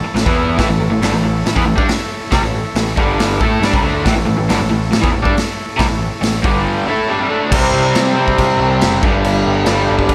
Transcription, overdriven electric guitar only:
0.05 muted overdriven electric guitar stroke medium
0.15 0.25 A2 medium
0.15 0.25 E3 medium
0.26 0.57 E3 medium
0.26 0.58 B3 medium
0.26 0.59 E4 medium
0.57 0.68 A2 medium
0.57 0.68 E3 loud
0.69 0.79 A2 medium
0.69 0.79 E3 medium
0.80 0.89 A2 medium
0.80 0.89 E3 medium
0.90 1.02 A2 medium
0.90 1.01 E3 medium
1.02 1.12 G2 medium
1.02 1.13 D3 loud
1.14 1.22 A2 medium
1.14 1.23 E3 medium
1.23 1.41 A2 medium
1.23 1.41 E3 medium
1.45 1.55 A2 medium
1.45 1.54 E3 medium
1.55 1.65 E3 medium
1.55 1.65 B3 loud
1.65 1.77 A2 medium
1.65 1.75 E3 medium
1.76 1.87 G3 medium
1.76 1.88 D4 loud
2.31 2.42 C3 medium
2.31 2.43 G3 medium
2.43 2.60 A2 medium
2.43 2.60 E3 medium
2.76 2.93 A2 medium
2.76 2.93 E3 medium
2.96 3.39 G2 medium
2.96 3.40 D3 loud
2.96 3.41 G3 loud
3.41 3.62 A3 medium
3.41 3.62 E4 medium
3.41 3.63 A4 loud
3.62 3.72 G3 medium
3.62 3.73 D4 medium
3.73 3.82 C3 loud
3.73 3.84 G3 medium
3.83 4.04 D3 loud
3.83 4.05 A3 medium
3.83 4.06 D4 loud
4.04 4.13 A2 loud
4.04 4.15 E3 medium
4.15 4.24 A2 medium
4.15 4.25 E3 medium
4.26 4.36 A2 medium
4.26 4.36 E3 medium
4.37 4.49 A2 medium
4.37 4.48 E3 medium
4.48 4.59 G2 medium
4.48 4.59 D3 loud
4.59 4.68 A2 medium
4.59 4.69 E3 medium
4.70 4.88 A2 medium
4.70 4.88 E3 medium
4.91 5.01 A2 medium
4.91 5.00 E3 medium
5.01 5.11 E3 medium
5.01 5.12 B3 loud
5.11 5.24 A2 medium
5.11 5.22 E3 medium
5.22 5.34 G3 medium
5.22 5.34 D4 medium
5.77 5.87 C3 medium
5.77 5.87 G3 loud
5.88 6.06 A2 medium
5.88 6.06 E3 medium
6.21 6.39 A2 medium
6.21 6.39 E3 medium
6.42 6.86 G2 loud
6.42 6.87 D3 loud
6.42 6.87 G3 loud
6.87 7.08 A3 medium
6.87 7.09 E4 loud
6.87 7.10 A4 medium
7.08 7.18 G3 medium
7.08 7.20 D4 loud
7.18 7.28 C3 medium
7.18 7.29 G3 medium
7.28 7.50 D3 medium
7.28 7.51 A3 loud
7.28 7.52 D4 loud
7.50 8.15 C3 medium
7.50 8.18 G3 loud
7.56 8.13 C4 loud
8.14 9.02 G3 medium
8.14 9.00 C4 loud
8.20 9.03 C3 medium
9.02 9.64 G2 loud
9.02 9.67 D3 loud
9.07 9.68 G3 loud
9.65 10.15 G2 medium
9.65 10.15 D3 medium
9.71 10.15 G3 loud

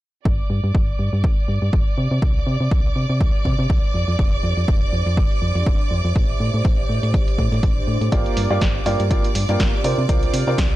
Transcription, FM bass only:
0.25 0.44 G1 loud
0.50 0.60 G2 loud
0.64 0.72 G2 medium
0.75 0.94 G1 medium
0.99 1.09 G2 medium
1.13 1.25 G2 medium
1.24 1.34 G1 medium
1.48 1.59 G2 medium
1.62 1.70 G2 medium
1.73 1.83 G1 medium
1.98 2.08 C3 medium
2.11 2.19 C3 loud
2.22 2.41 C2 medium
2.47 2.57 C3 loud
2.61 2.69 C3 medium
2.71 2.90 C2 medium
2.96 3.06 C3 medium
3.10 3.22 C3 medium
3.21 3.31 C2 medium
3.45 3.55 C3 medium
3.59 3.67 C3 medium
3.70 3.80 C2 medium
3.94 4.05 F2 medium
4.08 4.16 F2 medium
4.19 4.38 F1 medium
4.43 4.54 F2 loud
4.57 4.65 F2 medium
4.68 4.87 F1 medium
4.93 5.03 F2 medium
5.06 5.19 F2 medium
5.17 5.28 F1 medium
5.42 5.52 F2 medium
5.55 5.64 F2 medium
5.67 5.77 F1 medium
5.91 6.01 F2 medium
6.05 6.13 F2 loud
6.16 6.35 A1 medium
6.40 6.50 A2 loud
6.54 6.62 A2 medium
6.65 6.84 A1 medium
6.89 7.00 A2 medium
7.03 7.15 A2 medium
7.14 7.24 A1 medium
7.38 7.49 A2 medium
7.52 7.60 A2 loud
7.63 7.82 A1 medium
7.87 7.98 A2 medium
8.01 8.09 A2 medium
8.12 8.31 G1 loud
8.37 8.47 G2 loud
8.51 8.59 G2 medium
8.61 8.81 G1 medium
8.86 8.96 G2 medium
9.00 9.12 G2 medium
9.11 9.21 G1 medium
9.35 9.45 G2 medium
9.49 9.57 G2 medium
9.60 9.70 G1 medium
9.84 9.95 C3 medium
9.98 10.06 C3 loud
10.09 10.28 C2 loud
10.34 10.44 C3 loud
10.47 10.55 C3 medium
10.58 10.76 C2 medium

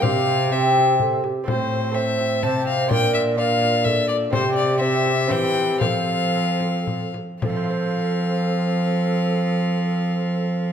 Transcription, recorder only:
0.04 0.51 G4 medium
0.53 0.95 G4 medium
1.01 1.26 A4 medium
1.24 1.47 G4 medium
1.47 1.92 C5 medium
1.95 2.41 C5 medium
2.42 2.92 C5 medium
2.91 3.38 A#4 medium
3.39 3.88 A#4 medium
3.87 4.36 A4 medium
4.34 4.81 G4 medium
4.82 5.30 G4 medium
5.31 5.83 G4 medium
5.82 7.15 A4 medium
5.82 5.87 A#4 medium
7.43 10.72 A4 medium

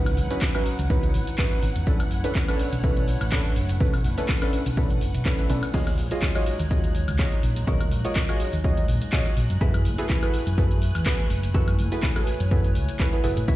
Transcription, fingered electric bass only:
0.00 0.19 C#2 loud
0.17 0.28 G#1 medium
0.79 1.11 C#2 medium
1.14 1.25 G#1 medium
1.63 1.73 G#1 medium
1.76 1.85 E2 loud
1.87 2.11 B1 loud
2.11 2.22 F#1 medium
2.72 3.17 B1 medium
3.21 3.30 A1 loud
3.56 3.76 F#1 medium
3.80 4.06 B1 loud
4.05 4.15 F#1 medium
4.66 4.98 B1 medium
5.01 5.12 F#1 medium
5.15 5.24 B1 loud
5.50 5.61 B1 loud
5.74 5.98 D#2 loud
5.98 6.09 A#1 medium
6.60 7.04 D#2 medium
7.08 7.17 C#2 loud
7.43 7.64 A#1 medium
7.67 7.92 D#2 loud
7.92 8.03 A#1 medium
8.53 8.85 D#2 medium
8.88 8.99 A#1 medium
9.37 9.48 A#1 medium
9.50 9.59 F#2 loud
9.61 9.87 F#2 loud
9.85 9.96 F#1 medium
10.47 10.91 F#2 medium
10.95 11.04 E2 loud
11.30 11.51 F#1 medium
11.55 11.80 F#2 loud
11.79 11.90 F#1 medium
12.40 12.72 F#2 medium
12.75 12.86 C#2 medium
13.24 13.35 F#1 medium
13.37 13.46 A2 loud
13.48 13.56 C#2 loud

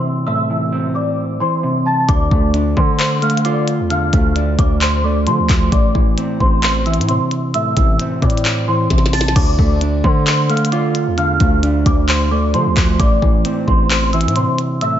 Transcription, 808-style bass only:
2.09 2.30 D2 loud
2.31 2.75 D2 loud
2.77 3.81 D3 loud
3.80 4.11 E2 loud
4.13 4.57 D2 loud
4.59 5.28 D2 loud
5.27 5.40 D3 loud
5.39 5.49 D2 loud
5.49 5.71 D2 loud
5.72 5.94 A1 loud
5.95 6.17 A1 loud
6.40 6.99 A1 loud
6.98 7.20 A2 loud
7.77 7.99 A1 loud
8.22 8.88 A2 loud
8.90 9.27 A1 loud
9.25 9.35 A#1 loud
9.36 9.58 D2 loud
9.59 10.02 D2 loud
10.04 11.09 D3 loud
11.07 11.39 E2 loud
11.40 11.84 D2 loud
11.86 12.56 D2 loud
12.54 12.68 D3 loud
12.66 12.76 D2 loud
12.77 12.99 D2 loud
13.00 13.21 A1 loud
13.22 13.44 A1 loud
13.68 14.27 A1 loud
14.25 14.47 A2 loud

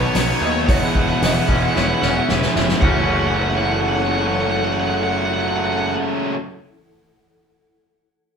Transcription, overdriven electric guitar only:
0.05 0.12 C#5 medium
0.14 0.19 C#5 loud
0.19 0.27 C#5 medium
0.28 0.35 C#5 medium
0.35 0.42 C#5 medium
0.42 0.50 C#5 medium
0.50 0.58 C#5 medium
0.59 0.66 C#5 medium
0.66 0.74 C#5 medium
0.66 0.77 F#5 loud
0.77 0.85 F#5 medium
0.85 0.91 F#5 loud
0.91 0.99 F#5 medium
0.99 1.07 F#5 loud
1.08 1.15 F#5 medium
1.16 1.23 F#5 loud
1.24 1.31 F#5 medium
1.32 1.39 F#5 loud
1.39 1.46 F#5 medium
1.47 1.54 F#5 loud
1.55 1.62 F#5 medium
1.62 1.70 F#5 loud
1.70 1.78 F#5 medium
1.78 1.85 F#5 loud
1.86 1.93 F#5 medium
1.94 2.01 F#5 medium
2.02 2.08 F#5 medium
2.08 2.16 F#5 medium
2.17 2.25 F#5 medium
2.81 2.89 F#5 medium
2.89 2.97 F#5 medium
2.97 3.03 F#5 medium
3.04 3.11 F#5 medium
3.12 3.19 F#5 medium
3.19 3.27 F#5 medium
3.27 3.34 F#5 medium
3.35 3.42 F#5 medium
3.42 3.49 F#5 medium
3.50 3.57 F#5 medium
3.58 3.65 F#5 medium
3.65 3.72 F#5 medium
3.72 3.80 F#5 medium
3.81 3.88 F#5 medium
3.89 3.95 F#5 medium
3.96 4.03 F#5 medium
4.03 4.11 F#5 medium
4.11 4.18 F#5 medium
4.19 4.26 F#5 medium
4.26 4.33 F#5 medium
4.34 4.40 F#5 medium
4.41 4.49 F#5 medium
4.50 4.56 F#5 medium
4.56 4.64 F#5 medium
4.65 4.72 F#5 medium
4.72 4.79 F#5 medium
4.80 4.87 F#5 medium
4.88 4.94 F#5 medium
4.94 5.02 F#5 medium
5.03 5.09 F#5 medium
5.10 5.17 F#5 medium
5.18 5.25 F#5 medium
5.26 5.33 F#5 medium
5.33 5.40 F#5 medium
5.40 5.48 F#5 medium
5.48 5.56 F#5 medium
5.56 5.64 F#5 medium
5.64 5.72 F#5 medium
5.72 5.77 F#5 medium
5.78 5.85 F#5 medium
5.87 5.94 F#5 medium

